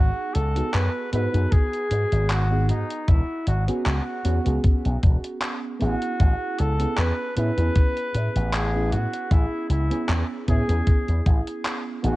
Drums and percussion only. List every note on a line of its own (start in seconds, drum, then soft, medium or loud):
0.35 closed hi-hat medium
0.56 closed hi-hat medium
0.74 clap loud
0.74 closed hi-hat medium
1.13 closed hi-hat medium
1.34 closed hi-hat medium
1.52 kick loud
1.52 closed hi-hat medium
1.73 closed hi-hat soft
1.91 closed hi-hat medium
2.12 closed hi-hat medium
2.30 clap loud
2.30 closed hi-hat medium
2.69 closed hi-hat medium
2.90 closed hi-hat medium
3.08 kick loud
3.08 closed hi-hat medium
3.47 closed hi-hat medium
3.68 closed hi-hat medium
3.86 clap loud
3.86 closed hi-hat medium
4.25 closed hi-hat medium
4.46 closed hi-hat medium
4.64 kick loud
4.64 closed hi-hat medium
4.85 closed hi-hat soft
5.03 kick loud
5.03 closed hi-hat medium
5.24 closed hi-hat medium
5.42 clap loud
5.42 closed hi-hat medium
5.81 closed hi-hat medium
6.02 closed hi-hat medium
6.20 kick loud
6.20 closed hi-hat medium
6.58 closed hi-hat medium
6.80 closed hi-hat medium
6.98 clap loud
6.98 closed hi-hat medium
7.37 closed hi-hat medium
7.58 closed hi-hat soft
7.76 kick loud
7.76 closed hi-hat medium
7.97 closed hi-hat soft
8.15 closed hi-hat medium
8.36 closed hi-hat medium
8.53 clap loud
8.53 closed hi-hat medium
8.92 closed hi-hat medium
9.14 closed hi-hat medium
9.31 kick loud
9.31 closed hi-hat medium
9.70 closed hi-hat medium
9.91 closed hi-hat medium
10.09 clap loud
10.09 closed hi-hat medium
10.48 kick medium
10.48 closed hi-hat medium
10.69 closed hi-hat medium
10.87 kick loud
10.87 closed hi-hat medium
11.08 closed hi-hat soft
11.26 kick loud
11.26 closed hi-hat medium
11.47 closed hi-hat medium
11.65 clap loud
11.65 closed hi-hat medium
12.04 closed hi-hat medium